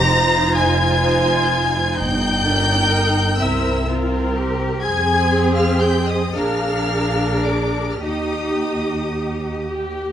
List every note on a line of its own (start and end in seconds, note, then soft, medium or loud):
0.00 0.41 F1 loud
0.00 1.00 D#4 medium
0.00 0.10 G4 medium
0.00 1.00 C5 medium
0.00 0.54 A#5 loud
0.00 0.54 A#6 loud
0.12 1.97 F4 loud
0.55 1.80 F1 loud
0.55 1.97 G#5 loud
0.55 1.96 G#6 loud
1.02 1.95 D#4 medium
1.02 1.95 C5 medium
1.97 3.23 G1 loud
1.97 2.45 D#4 medium
1.97 3.40 G5 loud
1.97 3.39 G6 loud
2.45 2.92 D4 medium
2.45 3.38 D#4 medium
2.45 3.37 A#4 medium
2.92 3.39 D#4 medium
3.39 4.66 C2 medium
3.39 3.86 C4 medium
3.39 3.86 E4 medium
3.39 3.86 A#4 medium
3.39 3.87 E5 medium
3.39 3.87 E6 loud
3.87 4.81 C4 medium
3.87 4.34 F4 medium
3.87 4.81 A#4 medium
4.35 4.83 G4 medium
4.82 6.32 F2 medium
4.82 6.31 C4 medium
4.82 6.31 G#4 medium
4.82 6.35 G#4 medium
4.82 5.52 G#5 loud
4.82 5.52 G#6 loud
5.56 5.82 F5 medium
5.56 5.81 F6 loud
5.80 6.08 G5 medium
5.80 6.07 G6 loud
6.07 6.35 D#5 medium
6.07 6.35 D#6 medium
6.34 8.01 A#1 medium
6.34 7.98 D4 medium
6.34 7.98 G#4 medium
6.34 7.97 A#4 medium
6.34 7.45 F5 medium
6.34 7.45 F6 loud
7.45 8.01 D5 medium
7.45 7.94 D6 medium
7.92 8.00 F6 medium
8.01 10.12 D#2 medium
8.01 9.55 D#4 medium
8.01 10.12 G4 medium
8.01 9.55 G4 medium
8.01 9.66 D#5 medium
8.01 9.69 D#6 medium
9.70 10.12 G4 medium